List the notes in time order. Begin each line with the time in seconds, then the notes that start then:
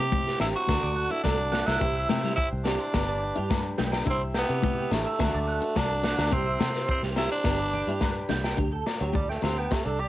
Already playing: C4 E4 G4
0.00 C3 C4
0.12 kick, high conga
0.26 G4, snare
0.39 A1 D4 E4 G4, snare, low agogo
0.53 F#4 C5
0.67 D2 C4 D4 F#4 A4, kick, snare, high conga, low agogo
0.82 D2 D5
0.96 F#5, muted conga
1.10 E4 F#4, muted steel-string acoustic guitar stroke
1.23 C2 D4 A4, kick, snare, high conga, low agogo
1.52 C4 F#5, snare, muted conga
1.66 C2 E4 F#5, snare, low agogo
1.81 C2 C4 E4 G4 C5, kick, muted conga
1.95 E5
2.09 C3 G5, snare, muted conga, high conga, low agogo
2.23 G3 G4, snare
2.36 E4 C5, kick
2.52 C2, muted clean electric guitar stroke
2.64 C4 D4 G4, snare, low agogo
2.80 C5
2.94 G1 B3 D4 G4 B4, kick, snare, low agogo
3.08 D5
3.22 muted clean electric guitar stroke, muted conga
3.35 G2 E4 G4
3.50 B4, kick, snare, high conga, low agogo
3.78 B1 D4 G5, snare, muted conga, high conga
3.92 G5, snare, low agogo
4.06 C2 D4 E4 G4 E5, kick, muted conga
4.10 C4
4.34 G5, snare, muted conga, low agogo
4.38 B3
4.49 C3 C4 G4
4.63 G4, kick, high conga
4.78 G4
4.91 A1 A3 D4 G4, snare, low agogo
5.06 E5
5.19 D2 C4 D4 F#4 A4, kick, snare, high conga, low agogo
5.34 D2 D5
5.48 F#5, muted conga
5.62 F#4, muted steel-string acoustic guitar stroke
5.76 C2 D4 A4, kick, snare, high conga, low agogo
6.03 C4 F#5, snare
6.18 D2 F#5, snare, low agogo
6.31 C2 C4 E4 G4 C5, kick, muted conga
6.47 E5
6.60 C3 G5, snare, muted conga, high conga, low conga, low agogo
6.75 B3, snare
6.88 C4 C5, kick
7.03 C2 G4, snare
7.16 C4 E4 G4, snare, low agogo
7.31 D4 C5
7.44 G1 B3 D4 G4 B4, kick, snare, low agogo
7.59 D5
7.74 G5, muted conga, low conga
7.87 G2 E4 G4
8.01 B4, kick, snare, high conga, low agogo
8.29 C2 D4 G5, snare, muted conga, high conga
8.44 G5, snare, low agogo
8.57 D2 D4 G4, kick, muted conga
8.72 A4
8.86 D5, snare, muted conga, low agogo
9.00 D2 F#3 C4 G4
9.13 G3 D5, kick, high conga
9.29 A3 G5, snare
9.42 D2 C4 G4, muted steel-string acoustic guitar stroke, snare, high conga, low agogo
9.58 B3 G5
9.70 A3 C4 G4, kick, snare, muted conga, low agogo
9.85 C2 D4 A4
9.99 G4 D5